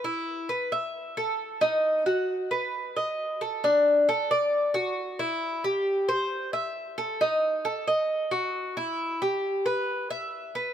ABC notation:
X:1
M:4/4
L:1/8
Q:1/4=134
K:Em
V:1 name="Cuban tres"
E2 B e2 A2 ^D- | ^D F2 B2 ^d2 A | D2 A d2 F2 E- | E G2 c2 e2 A |
^D2 A ^d2 F2 E- | E G2 B2 e2 B |]